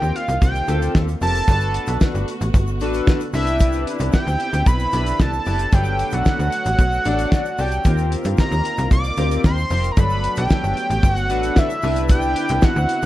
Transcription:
Already playing: string section D#3 A#3 C4 F4, analog polysynth C4 F4 G4 A#4, analog synth lead G5
0.02 fm bass D#2, shaker
0.16 analog synth lead F5, closed hi-hat
0.28 fm bass C2, closed hi-hat, shaker
0.42 fm bass C2, analog synth lead G5, kick, closed hi-hat, shaker
0.55 closed hi-hat, shaker
0.68 fm bass D2, analog polysynth C4 F4 G4 A4, closed hi-hat, shaker
0.82 closed hi-hat, shaker
0.95 fm bass D#2, kick, snare, shaker
1.08 closed hi-hat, shaker
1.21 fm bass F1, analog polysynth C4 F4 G4 A#4, analog synth lead A5, open hi-hat, shaker
1.35 closed hi-hat, shaker
1.48 fm bass G1, string section D3 A3 B3 F#4, analog polysynth D4 F#4 A4 B4, kick, closed hi-hat, shaker
1.60 closed hi-hat, shaker
1.74 closed hi-hat
1.86 fm bass B1, closed hi-hat, shaker
2.01 kick, snare, shaker
2.15 fm bass G1, closed hi-hat, shaker
2.28 closed hi-hat
2.41 fm bass A1, closed hi-hat, shaker
2.54 fm bass G1, kick, closed hi-hat, shaker
2.67 shaker
2.80 fm bass A1, analog polysynth D4 F#4 A4 B4, closed hi-hat, shaker
2.94 closed hi-hat, shaker
3.07 kick, snare, shaker
3.20 closed hi-hat, shaker
3.33 fm bass C2, string section B3 C4 E4, analog polysynth D4 E4 G4 B4, analog synth lead E5, open hi-hat, shaker
3.47 closed hi-hat, shaker
3.59 kick, closed hi-hat, shaker
3.72 closed hi-hat, shaker
3.87 closed hi-hat
3.99 fm bass C2, closed hi-hat, shaker
4.12 analog synth lead G5, kick, snare, shaker
4.27 fm bass D2, closed hi-hat, shaker
4.40 closed hi-hat
4.53 fm bass D2, closed hi-hat, shaker
4.66 fm bass B1, analog synth lead B5, kick, closed hi-hat, shaker
4.79 closed hi-hat, shaker
4.92 fm bass B1, analog polysynth D4 E4 G4 B4, closed hi-hat, shaker
5.06 closed hi-hat, shaker
5.20 fm bass C2, analog synth lead A5, kick, snare, shaker
5.33 shaker
5.45 fm bass F#1, analog polysynth D4 E4 G4 B4, open hi-hat, shaker
5.59 closed hi-hat, shaker
5.72 fm bass G1, analog polysynth F#3 D4 A4 B4, string section F#3 A3, analog synth lead G5, kick, closed hi-hat, shaker
5.84 shaker
5.98 closed hi-hat, shaker
6.11 fm bass B1, analog synth lead F#5, closed hi-hat, shaker
6.25 kick, snare, shaker
6.39 fm bass D2, closed hi-hat, shaker
6.52 closed hi-hat, shaker
6.65 fm bass A1, closed hi-hat, shaker
6.79 fm bass B1, kick, closed hi-hat, shaker
6.92 shaker
7.04 fm bass A1, analog polysynth D4 F#4 A4 D5, closed hi-hat, shaker
7.19 closed hi-hat, shaker
7.32 kick, snare, shaker
7.45 closed hi-hat, shaker
7.58 fm bass C2, analog polysynth D4 F#4 A4 D5, analog synth lead G5, open hi-hat, shaker
7.72 closed hi-hat, shaker
7.84 fm bass D#2, string section D#3 A#3 C4 F4, analog polysynth C4 F4 G4 A#4, kick, closed hi-hat, shaker
7.98 closed hi-hat, shaker
8.12 closed hi-hat
8.23 fm bass G2, closed hi-hat, shaker
8.37 analog synth lead A#5, kick, snare, shaker
8.51 fm bass D#2, closed hi-hat, shaker
8.65 closed hi-hat
8.77 fm bass C2, closed hi-hat, shaker
8.91 fm bass C2, analog synth lead D6, kick, closed hi-hat, shaker
9.04 closed hi-hat, shaker
9.17 fm bass D2, analog polysynth C4 F4 G4 A#4, closed hi-hat, shaker
9.31 closed hi-hat, shaker
9.44 fm bass D#2, analog synth lead C6, kick, snare, shaker
9.58 shaker
9.70 fm bass F1, analog polysynth C4 F4 G4 A#4, open hi-hat, shaker
9.84 closed hi-hat, shaker
9.92 analog synth lead A#5
9.97 fm bass G1, string section D3 F#3 A3 B3, analog polysynth F#3 D4 A4 B4, analog synth lead B5, kick, closed hi-hat, shaker
10.10 shaker
10.24 closed hi-hat
10.36 fm bass B1, analog synth lead G5, closed hi-hat, shaker
10.50 kick, snare, shaker
10.64 fm bass G1, closed hi-hat, shaker
10.77 closed hi-hat
10.90 fm bass A1, closed hi-hat, shaker
11.03 fm bass G1, kick, closed hi-hat, shaker
11.14 analog synth lead F#5, closed hi-hat, shaker
11.29 fm bass A1, analog polysynth D4 F#4 A4 B4, closed hi-hat, shaker
11.43 closed hi-hat, shaker
11.56 analog synth lead E5, kick, snare, shaker
11.70 closed hi-hat, shaker
11.82 fm bass C2, string section B3 C4 E4, analog polysynth D4 E4 G4 B4, open hi-hat, shaker
11.96 closed hi-hat, shaker
12.09 analog synth lead G5, kick, closed hi-hat, shaker
12.21 shaker
12.36 closed hi-hat
12.48 fm bass C2, closed hi-hat, shaker
12.62 analog synth lead F#5, kick, snare, shaker
12.76 fm bass D2, shaker
12.89 closed hi-hat
13.02 shaker

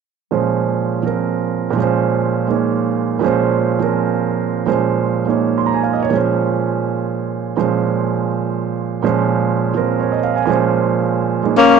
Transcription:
0.31 grand piano A#2 F3 G#3 C#4 C5
1.03 grand piano F3 C4 A#4
1.71 grand piano A#2 F3
1.76 grand piano G#3 C#4
1.82 grand piano C5
2.48 grand piano G#3 A#3 D#4 C#5
3.19 grand piano A#2 F3 G#3 C#4
3.25 grand piano C5
3.80 grand piano F3 C4 A#4
4.66 grand piano A#2 F3 G#3 C#4 C5
5.26 grand piano G#3 A#3 D#4 C#5
5.58 grand piano C6
5.66 grand piano A#5
5.74 grand piano G#5
5.83 grand piano F5
5.93 grand piano D#5
6.03 grand piano C#5
6.10 grand piano A#2 F3 G#3 C#4
6.15 grand piano C5
7.57 grand piano A#2 F3 G#3 C#4 C5
9.03 grand piano A#2 F3 G#3 C#4 C5
9.74 grand piano F3 C4 A#4
10.00 grand piano C#5
10.12 grand piano D#5
10.24 grand piano F5
10.36 grand piano G#5
10.46 grand piano A#2 F3 G#3 C#4
10.50 grand piano C5
11.43 grand piano G#3 A#3 D#4 C#5
11.58 tenor saxophone A#3, alto saxophone C#4

